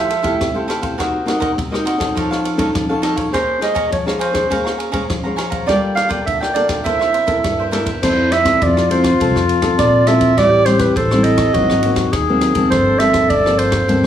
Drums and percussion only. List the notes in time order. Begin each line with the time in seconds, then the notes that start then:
0.10 ride
0.24 kick, ride
0.41 kick, cross-stick, ride
0.70 cross-stick, ride
0.83 kick, ride
1.00 kick, cross-stick, ride
1.28 cross-stick, ride
1.42 kick, ride
1.58 kick, ride
1.74 cross-stick
1.87 ride
2.00 kick, cross-stick, ride
2.17 kick, ride
2.32 cross-stick
2.45 ride
2.59 kick, ride
2.75 kick, cross-stick, ride
3.03 cross-stick, ride
3.17 kick, ride
3.34 kick, cross-stick, ride
3.62 cross-stick, ride
3.76 kick, ride
3.92 kick, ride
4.08 cross-stick
4.21 ride
4.35 kick, cross-stick, ride
4.51 kick, ride
4.67 cross-stick
4.80 ride
4.93 kick, ride
5.10 kick, cross-stick, ride
5.38 cross-stick, ride
5.52 kick, ride
5.68 kick, cross-stick, ride
5.97 cross-stick, ride
6.10 kick, ride
6.27 kick, ride
6.43 cross-stick
6.56 ride
6.69 kick, cross-stick, ride
6.86 kick, ride
7.01 cross-stick
7.14 ride
7.28 kick, ride
7.44 kick, cross-stick, ride
7.73 cross-stick, ride
7.86 kick, ride
8.03 kick, cross-stick, crash
8.32 cross-stick, ride
8.45 kick, cross-stick, ride
8.62 kick, ride
8.77 cross-stick
8.91 ride
9.04 kick, cross-stick, ride
9.20 kick, ride
9.36 cross-stick
9.49 ride
9.62 kick, cross-stick, ride
9.79 kick, cross-stick, ride
10.07 cross-stick, ride
10.21 kick, ride
10.37 kick, cross-stick, ride
10.66 cross-stick, ride
10.79 kick, cross-stick, ride
10.96 kick, ride
11.11 cross-stick
11.24 ride
11.38 kick, cross-stick, ride
11.54 kick, ride
11.70 cross-stick
11.83 ride
11.96 kick, cross-stick, ride
12.13 kick, cross-stick, ride
12.41 cross-stick, ride
12.55 kick, ride
12.72 kick, cross-stick, ride
13.00 cross-stick, ride
13.13 kick, cross-stick, ride
13.30 kick, ride
13.46 cross-stick
13.59 ride
13.72 kick, cross-stick, ride
13.89 kick, ride